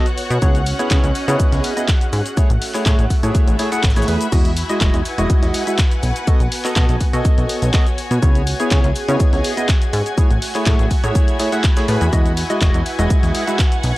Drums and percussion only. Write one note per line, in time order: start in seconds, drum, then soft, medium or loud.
0.06 closed hi-hat soft
0.06 shaker soft
0.18 open hi-hat loud
0.18 shaker medium
0.30 closed hi-hat soft
0.30 shaker medium
0.42 kick loud
0.42 closed hi-hat medium
0.42 shaker medium
0.55 closed hi-hat soft
0.55 shaker soft
0.66 open hi-hat loud
0.66 shaker medium
0.79 closed hi-hat soft
0.79 shaker medium
0.91 kick loud
0.91 snare loud
0.91 clap loud
0.91 closed hi-hat medium
0.91 shaker medium
1.04 closed hi-hat soft
1.04 shaker soft
1.15 open hi-hat loud
1.15 shaker medium
1.28 closed hi-hat soft
1.28 shaker medium
1.40 kick loud
1.40 closed hi-hat medium
1.40 shaker medium
1.52 snare medium
1.52 closed hi-hat soft
1.52 shaker soft
1.64 open hi-hat loud
1.64 shaker medium
1.77 closed hi-hat soft
1.77 shaker medium
1.88 kick loud
1.88 snare loud
1.88 clap loud
1.88 closed hi-hat medium
1.88 shaker medium
2.01 closed hi-hat soft
2.01 shaker soft
2.13 open hi-hat medium
2.13 shaker medium
2.26 closed hi-hat soft
2.26 shaker medium
2.37 kick loud
2.37 closed hi-hat medium
2.37 shaker medium
2.50 closed hi-hat soft
2.50 shaker soft
2.62 open hi-hat medium
2.74 clap soft
2.74 closed hi-hat soft
2.74 shaker medium
2.86 kick loud
2.86 snare loud
2.86 clap loud
2.86 closed hi-hat medium
2.86 shaker medium
2.99 closed hi-hat soft
2.99 shaker soft
3.10 kick medium
3.10 open hi-hat loud
3.10 shaker medium
3.23 closed hi-hat soft
3.23 shaker medium
3.35 kick loud
3.35 closed hi-hat medium
3.35 shaker medium
3.48 closed hi-hat soft
3.48 shaker soft
3.59 open hi-hat loud
3.59 shaker medium
3.72 closed hi-hat soft
3.72 shaker medium
3.83 kick loud
3.83 snare medium
3.83 clap loud
3.83 closed hi-hat medium
3.83 shaker medium
3.90 snare medium
3.90 shaker medium
3.96 snare medium
3.96 closed hi-hat soft
3.96 shaker medium
3.96 shaker soft
4.02 snare medium
4.02 shaker medium
4.08 open hi-hat loud
4.08 shaker medium
4.21 closed hi-hat soft
4.21 shaker medium
4.32 kick loud
4.32 closed hi-hat medium
4.32 crash medium
4.32 shaker medium
4.45 closed hi-hat soft
4.45 shaker soft
4.57 open hi-hat loud
4.57 shaker medium
4.69 closed hi-hat soft
4.69 shaker medium
4.81 kick loud
4.81 snare loud
4.81 clap loud
4.81 closed hi-hat medium
4.81 shaker medium
4.94 closed hi-hat soft
4.94 shaker soft
5.05 open hi-hat loud
5.05 shaker medium
5.18 closed hi-hat soft
5.18 shaker medium
5.30 kick loud
5.30 closed hi-hat medium
5.30 shaker medium
5.43 snare medium
5.43 closed hi-hat soft
5.43 shaker soft
5.54 open hi-hat loud
5.54 shaker medium
5.67 closed hi-hat soft
5.67 shaker medium
5.79 kick loud
5.79 snare loud
5.79 clap loud
5.79 closed hi-hat medium
5.79 shaker medium
5.91 closed hi-hat soft
5.91 shaker soft
6.03 open hi-hat loud
6.03 shaker medium
6.16 closed hi-hat soft
6.16 shaker medium
6.27 kick loud
6.27 closed hi-hat medium
6.27 shaker medium
6.40 closed hi-hat soft
6.40 shaker soft
6.52 open hi-hat medium
6.52 open hi-hat loud
6.65 clap soft
6.65 closed hi-hat soft
6.65 shaker medium
6.76 kick loud
6.76 snare loud
6.76 clap loud
6.76 closed hi-hat medium
6.76 shaker medium
6.89 closed hi-hat soft
6.89 shaker soft
7.01 kick medium
7.01 open hi-hat loud
7.01 shaker medium
7.13 closed hi-hat soft
7.13 shaker medium
7.25 kick loud
7.25 closed hi-hat medium
7.25 shaker medium
7.38 closed hi-hat soft
7.38 shaker soft
7.49 open hi-hat loud
7.49 shaker medium
7.62 closed hi-hat soft
7.62 shaker medium
7.74 kick loud
7.74 snare loud
7.74 clap loud
7.74 closed hi-hat medium
7.74 shaker medium
7.87 closed hi-hat soft
7.87 shaker soft
7.98 open hi-hat loud
7.98 shaker medium
8.11 closed hi-hat soft
8.11 shaker medium
8.23 kick loud
8.23 closed hi-hat medium
8.23 shaker medium
8.35 closed hi-hat soft
8.35 shaker soft
8.47 open hi-hat loud
8.47 shaker medium
8.60 closed hi-hat soft
8.60 shaker medium
8.71 kick loud
8.71 snare loud
8.71 clap loud
8.71 closed hi-hat medium
8.71 shaker medium
8.84 closed hi-hat soft
8.84 shaker soft
8.96 open hi-hat loud
8.96 shaker medium
9.09 closed hi-hat soft
9.09 shaker medium
9.20 kick loud
9.20 closed hi-hat medium
9.20 shaker medium
9.33 snare medium
9.33 closed hi-hat soft
9.33 shaker soft
9.44 open hi-hat loud
9.44 shaker medium
9.57 closed hi-hat soft
9.57 shaker medium
9.69 kick loud
9.69 snare loud
9.69 clap loud
9.69 closed hi-hat medium
9.69 shaker medium
9.82 closed hi-hat soft
9.82 shaker soft
9.93 open hi-hat loud
9.93 shaker medium
10.06 closed hi-hat soft
10.06 shaker medium
10.18 kick loud
10.18 closed hi-hat medium
10.18 shaker medium
10.31 closed hi-hat soft
10.31 shaker soft
10.42 open hi-hat medium
10.42 open hi-hat loud
10.55 clap soft
10.55 closed hi-hat soft
10.55 shaker medium
10.66 kick loud
10.66 snare loud
10.66 clap loud
10.66 closed hi-hat medium
10.66 shaker medium
10.79 closed hi-hat soft
10.79 shaker soft
10.91 kick medium
10.91 open hi-hat loud
10.91 shaker medium
11.04 closed hi-hat soft
11.04 shaker medium
11.15 kick loud
11.15 closed hi-hat medium
11.15 shaker medium
11.28 closed hi-hat soft
11.28 shaker soft
11.40 open hi-hat loud
11.40 shaker medium
11.52 closed hi-hat soft
11.52 shaker medium
11.64 kick loud
11.64 snare loud
11.64 clap loud
11.64 closed hi-hat medium
11.64 shaker medium
11.77 snare loud
11.77 closed hi-hat soft
11.77 shaker medium
11.77 shaker soft
11.88 open hi-hat loud
11.88 shaker medium
12.01 closed hi-hat soft
12.01 shaker medium
12.13 kick loud
12.13 closed hi-hat medium
12.13 shaker medium
12.26 closed hi-hat soft
12.26 shaker soft
12.37 open hi-hat loud
12.37 shaker medium
12.50 closed hi-hat soft
12.50 shaker medium
12.62 kick loud
12.62 snare loud
12.62 clap loud
12.62 closed hi-hat medium
12.62 shaker medium
12.74 closed hi-hat soft
12.74 shaker soft
12.86 open hi-hat loud
12.86 shaker medium
12.99 closed hi-hat soft
12.99 shaker medium
13.10 kick loud
13.10 closed hi-hat medium
13.10 shaker medium
13.23 snare medium
13.23 closed hi-hat soft
13.23 shaker soft
13.35 open hi-hat loud
13.35 shaker medium
13.48 closed hi-hat soft
13.48 shaker medium
13.59 kick loud
13.59 snare loud
13.59 clap loud
13.59 closed hi-hat medium
13.59 shaker medium
13.72 closed hi-hat soft
13.72 shaker soft
13.84 open hi-hat loud
13.84 shaker medium